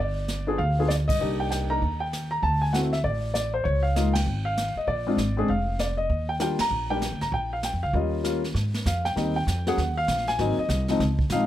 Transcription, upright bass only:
0.00 0.56 G1 medium
0.59 1.05 D2 medium
1.09 1.20 G2 medium
1.21 1.79 C2 medium
1.82 2.40 D#2 medium
2.42 3.01 D2 medium
3.04 3.62 A1 medium
3.65 4.23 C#2 medium
4.26 4.72 G#1 medium
4.75 muted upright bass stroke soft
4.87 5.16 A#1 medium
5.17 5.46 G#1 medium
5.48 6.06 F1 medium
6.10 6.56 D#2 medium
6.59 muted upright bass stroke soft
6.70 7.09 A#1 medium
7.12 7.21 D2 medium
7.22 7.31 G#1 medium
7.32 7.70 A#1 medium
7.73 7.83 F2 medium
7.84 7.93 C#2 medium
7.93 8.52 D#2 medium
8.54 8.84 G#2 medium
8.86 9.15 F2 medium
9.16 9.46 D#2 medium
9.47 9.76 F2 medium
9.77 10.07 D#2 medium
10.08 10.38 A#1 medium
10.39 10.56 G#1 medium
10.58 muted upright bass stroke soft
10.69 10.99 C2 medium
11.00 11.29 C#2 medium
11.30 11.46 A#1 medium

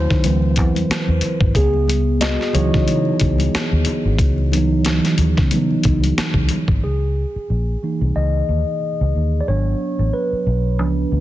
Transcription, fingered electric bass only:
0.11 0.21 D#3 medium
0.24 0.58 D2 medium
0.58 0.83 E2 medium
0.89 muted fingered electric bass stroke soft
1.08 1.19 E2 medium
1.41 1.52 G#1 medium
1.56 2.36 C#2 loud
2.55 2.69 C#2 medium
2.75 3.11 C#3 medium
3.22 3.47 C#2 medium
3.55 muted fingered electric bass stroke soft
3.72 3.83 D#2 medium
4.05 4.16 G#1 medium
4.19 4.99 C#2 loud
5.18 5.33 D#2 medium
5.38 5.75 C#3 medium
5.86 6.11 C#2 medium
6.18 muted fingered electric bass stroke soft
6.34 6.46 C#2 medium
6.69 6.80 G#1 medium
6.84 7.24 C#2 medium
7.36 muted fingered electric bass stroke soft
7.50 7.75 A#1 medium
8.01 8.12 C2 medium
8.16 8.41 C#2 medium
8.49 8.63 D#2 medium
9.01 9.11 C#2 medium
9.15 9.40 D#2 medium
9.48 9.73 G#1 medium
9.99 10.10 A1 medium
10.33 muted fingered electric bass stroke soft
10.46 10.79 B1 medium
10.79 11.04 C#2 medium
11.12 11.20 D2 medium

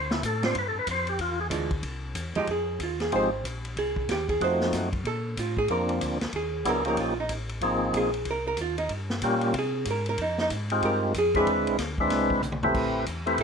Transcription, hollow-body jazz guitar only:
0.43 0.54 D3 medium
0.43 0.54 G3 medium
0.43 0.54 C4 medium
0.43 0.55 F4 medium
1.50 1.69 E3 medium
1.50 1.69 G#3 medium
1.50 1.69 D4 medium
1.50 1.70 F4 medium
2.36 2.47 F3 medium
2.36 2.47 G#3 medium
2.36 2.47 D#4 medium
2.36 2.48 G4 medium
2.51 2.80 G#4 medium
2.83 3.01 F4 soft
3.01 3.13 G#4 medium
3.16 3.44 C5 medium
3.79 4.08 G#4 medium
4.11 4.29 G4 medium
4.30 4.41 G#4 medium
4.44 4.73 C5 medium
5.07 5.36 A4 medium
5.39 5.58 F4 medium
5.58 5.70 G#4 medium
5.71 6.00 A#4 medium
6.36 6.65 G#4 medium
6.69 6.87 A#4 medium
6.88 6.99 A#4 medium
7.00 7.19 F4 medium
7.20 7.31 D#4 medium
7.97 8.26 G#4 medium
8.31 8.46 A#4 medium
8.47 8.59 A#4 medium
8.61 8.78 F4 medium
8.78 8.90 D#4 medium
9.59 9.87 G#4 medium
9.91 10.08 A#4 medium
10.09 10.20 A#4 medium
10.22 10.40 D#4 medium
10.41 10.48 D#4 medium
10.85 11.14 A#4 medium
11.18 11.36 G#4 medium
11.37 11.77 G#4 loud

